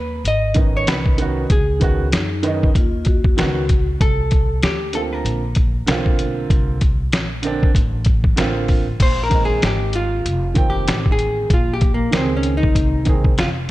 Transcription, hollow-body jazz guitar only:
0.00 0.22 B4 medium
0.28 0.76 D#5 loud
0.77 0.89 C#5 medium
0.89 1.53 B4 medium
1.52 3.35 G#4 medium
4.01 4.65 A4 loud
4.64 4.95 G4 medium
4.95 5.00 A4 loud
5.13 8.38 A#4 medium
9.02 9.23 C5 loud
9.23 9.44 A#4 medium
9.45 9.63 G#4 loud
9.66 9.96 G4 medium
9.95 10.70 F4 loud
10.70 11.11 G4 medium
11.12 11.53 G#4 medium
11.54 11.73 F4 medium
11.74 11.92 G4 medium
11.94 12.14 A#3 medium
12.17 12.36 C4 medium
12.37 12.55 C#4 medium
12.57 13.14 D#4 medium
13.40 13.48 F4 medium

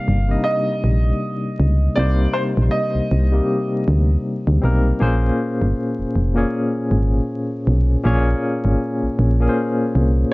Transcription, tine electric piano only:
0.00 0.14 C3 medium
0.00 0.14 G3 medium
0.00 0.15 A#3 medium
0.00 0.18 D#4 medium
0.00 0.16 D5 medium
0.28 1.64 C3 medium
0.28 1.64 G3 medium
0.28 1.65 A#3 soft
0.28 0.34 D4 soft
0.28 1.66 D#5 medium
0.37 1.68 D#4 medium
1.96 3.18 C3 medium
1.96 3.18 G3 medium
1.96 3.18 A#3 medium
1.96 3.19 D#4 medium
1.96 3.19 C5 medium
3.31 4.51 C3 medium
3.31 4.52 G3 medium
3.31 4.52 A#3 medium
3.31 4.52 D#4 medium
3.31 4.53 G4 medium
4.62 4.97 G3 medium
4.62 4.97 A#3 medium
4.62 4.97 C4 medium
4.62 4.98 D#4 medium
4.62 4.98 A#4 medium
4.99 6.21 A#2 medium
4.99 6.22 A#3 medium
4.99 6.22 C#4 medium
4.99 6.23 G#4 medium
4.99 6.23 C5 loud
6.35 7.71 A#2 medium
6.35 7.72 A#3 medium
6.35 7.72 C#4 medium
6.35 7.73 G#4 medium
6.35 7.73 C#5 medium
8.03 9.25 A#2 medium
8.03 9.26 A#3 medium
8.03 9.26 C#4 medium
8.03 9.26 G#4 medium
8.03 9.27 C#5 loud
9.39 10.33 A#2 medium
9.39 10.33 A#3 medium
9.39 10.33 C#4 medium
9.39 10.33 G#4 medium
9.39 9.46 A#4 medium
9.49 10.33 C5 medium

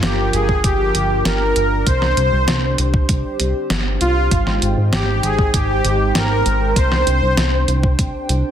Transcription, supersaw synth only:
0.03 0.34 G4 medium
0.34 0.65 G#4 medium
0.64 1.27 G4 medium
1.25 1.83 A#4 loud
1.87 3.05 C5 loud
4.01 4.58 F4 loud
4.93 5.21 G4 medium
5.24 5.55 G#4 medium
5.54 6.17 G4 loud
6.16 6.73 A#4 loud
6.77 7.95 C5 loud

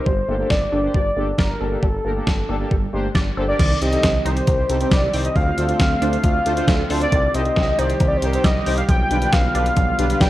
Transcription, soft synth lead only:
0.00 0.52 C5 loud
0.51 0.94 D5 loud
0.94 1.36 D5 loud
1.38 1.80 A#4 medium
1.83 3.11 A4 medium
3.37 3.42 C5 medium
3.48 3.79 D5 medium
3.81 4.22 D#5 loud
4.26 4.88 C5 loud
4.92 5.23 D5 medium
5.25 5.37 D#5 medium
5.36 5.80 F5 loud
5.80 6.92 F5 loud
6.90 7.01 C5 medium
7.01 7.32 D5 loud
7.34 7.80 D#5 loud
7.79 8.10 C5 loud
8.08 8.19 D5 medium
8.17 8.28 C5 medium
8.26 8.37 A#4 medium
8.35 8.44 C5 medium
8.45 8.75 D#5 loud
8.78 8.83 F5 loud
8.89 9.34 G5 loud
9.33 10.23 F5 loud
10.21 10.30 G5 loud

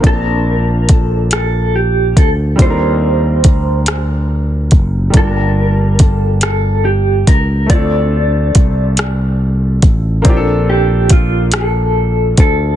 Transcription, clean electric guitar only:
0.07 0.92 A#4 medium
0.92 1.33 A4 medium
1.33 1.76 A4 medium
1.76 2.19 G4 medium
2.18 2.29 A4 medium
2.62 4.27 C5 medium
5.17 6.02 A#4 medium
6.02 6.43 A4 medium
6.43 6.86 A4 medium
6.85 7.29 G4 medium
7.28 7.70 A#4 medium
7.70 9.36 D5 medium
10.70 11.12 G4 medium
11.12 11.55 F4 medium
11.56 12.35 A4 medium
12.40 12.76 A4 medium

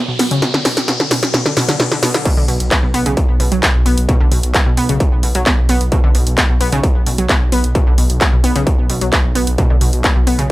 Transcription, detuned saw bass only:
2.37 2.46 B1 medium
2.48 2.58 B1 loud
2.60 2.69 B1 medium
2.83 2.92 B1 medium
2.95 3.04 B1 loud
3.06 3.15 B1 medium
3.29 3.38 B1 medium
3.40 3.50 B1 loud
3.52 3.61 B1 medium
3.75 3.84 B1 medium
3.86 3.95 B1 loud
3.98 4.07 B1 medium
4.21 4.30 B1 medium
4.32 4.41 B1 loud
4.44 4.53 B1 medium
4.66 4.75 B1 medium
4.78 4.87 B1 loud
4.89 4.98 B1 medium
5.12 5.21 B1 medium
5.23 5.33 B1 loud
5.35 5.44 B1 loud
5.58 5.67 B1 medium
5.69 5.79 B1 medium
5.81 5.90 B1 medium
6.04 6.13 B1 medium
6.15 6.24 B1 loud
6.27 6.36 B1 medium
6.50 6.59 B1 medium
6.61 6.70 B1 loud
6.72 6.82 B1 medium
6.95 7.04 B1 medium
7.06 7.16 B1 loud
7.18 7.27 B1 medium
7.41 7.50 B1 medium
7.52 7.62 B1 loud
7.64 7.73 B1 medium
7.87 7.96 B1 medium
7.98 8.08 B1 loud
8.10 8.19 B1 medium
8.33 8.42 B1 medium
8.44 8.53 B1 loud
8.56 8.65 B1 medium
8.78 8.88 B1 medium
8.90 8.99 B1 loud
9.02 9.11 B1 medium
9.24 9.33 B1 medium
9.35 9.45 B1 loud
9.47 9.56 B1 medium
9.70 9.79 B1 medium
9.81 9.91 B1 loud
9.93 10.02 B1 medium
10.16 10.25 B1 medium
10.27 10.37 B1 loud
10.39 10.48 B1 medium

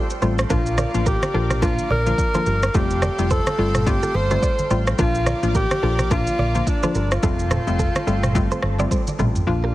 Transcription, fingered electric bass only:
0.22 0.43 A1 loud
0.50 0.83 A#1 loud
0.94 1.16 A1 medium
1.34 1.76 A#1 loud
1.90 2.11 A#1 loud
2.46 2.67 G1 medium
2.74 3.08 F1 loud
3.19 3.40 F1 medium
3.58 4.01 G1 medium
4.15 4.36 G1 medium
4.71 4.92 A1 loud
4.99 5.32 A#1 loud
5.43 5.64 A1 loud
5.83 6.25 A#1 loud
6.39 6.60 A#1 loud
6.95 7.16 G1 loud
7.23 7.56 F1 loud
7.67 7.88 F1 medium
8.07 8.49 G1 loud
8.63 8.84 G1 medium
9.19 9.40 A1 loud
9.47 9.75 A#1 medium

